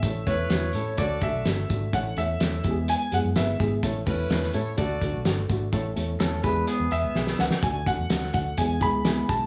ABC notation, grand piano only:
X:1
M:4/4
L:1/16
Q:1/4=126
K:A
V:1 name="Grand piano"
e2 c6 d2 e6 | f2 e6 g2 f2 e3 z | z16 | z8 z2 e4 f2 |
g2 f4 f2 g2 b4 a2 |]